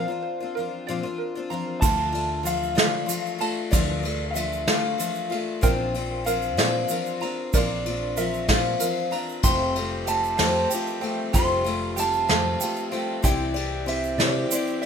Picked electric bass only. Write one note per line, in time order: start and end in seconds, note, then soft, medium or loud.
1.82 2.78 D2 loud
2.78 3.03 D3 loud
3.73 4.69 D2 loud
4.69 4.94 D3 medium
5.63 6.59 A#1 loud
6.59 6.84 A#2 loud
7.54 8.51 A#1 loud
8.49 8.75 A#2 medium
9.44 10.41 F1 loud
10.40 10.65 F2 medium
11.34 12.31 F1 loud
12.30 12.55 F2 medium
13.24 14.20 C2 loud
14.18 14.44 C3 loud